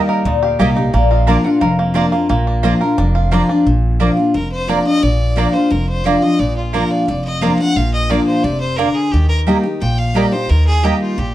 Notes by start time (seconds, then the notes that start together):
Already playing: D#3 G3 A#3 D#4 G4
0.08 A#4 D#5
0.25 D2 A#2 D#4 D5
0.43 G4 F5
0.59 C2 G3 A#3 D#4 G4 D#5 G5 A#5
0.76 D#4 G4 D#5
0.93 A#1 A#2 A#3 D5
1.11 F4 D#5
1.27 F3 A#3 D4 F4 A#4 D5 F5 A#5
1.44 D4 F4 F#5
1.60 F1 F2 A#4 F5
1.79 A#3
1.94 F3 A#3 D4 F4 D5 A#5
2.12 A#3 D4 F4
2.29 A#1 A#2 A#3
2.47 D4
2.63 F3 A#3 D4 F4 D5 A#5
2.81 D4 F4 A#4
2.98 F1 F2 D4
3.15 F4
3.31 F3 A#3 D4 F4 D5 A#5
3.49 D4 F4
3.66 A#1 A#2
4.00 F3 A#3 D4 F4 D5 A#5
4.17 D4 F4
4.34 F1 F2 A#4
4.52 C5
4.67 F3 A#3 D4 F4 D5 A#5
4.85 D4 F4 D#5
5.03 A#1 A#2 D5
5.36 F3 A#3 D4 F4 D5 A#5
5.53 D4 F4 C5
5.70 F1 F2 A#4
5.89 C5
6.04 F3 A#3 D4 F4 D5 A#5
6.22 D4 F4 D#5
6.39 A#1 A#2 D5
6.57 F4
6.73 F3 A#3 D4 F4 A#4 D5 A#5
6.91 D5
7.07 F1 F2 D5
7.24 D#5
7.41 F3 A#3 D4 F4 D5 F5 A#5
7.58 D4 F4 F#5
7.76 A#1 A#2 F5
7.93 D#5
8.10 F3 A#3 D4 F4 D5 A#5
8.27 C5
8.44 F1 C3 D5
8.60 C5
8.77 D3 A#3 F4 A#4 D5 A#5
8.94 G#4
9.12 D#2 D#3 G4
9.29 A#4
9.47 G3 A#3 D#4 G4 D#5 A#5
9.63 D#4 G4
9.81 A#1 A#2 G5
9.98 F5
10.14 G3 A#3 D#4 G4 D5 D#5 A#5
10.32 D#4 G4 C5
10.49 D#2 D#3 A#4
10.67 G#4
10.83 G3 A#3 D#4 G4 D#5 A#5
11.02 F4
11.18 A#1 A#2 G4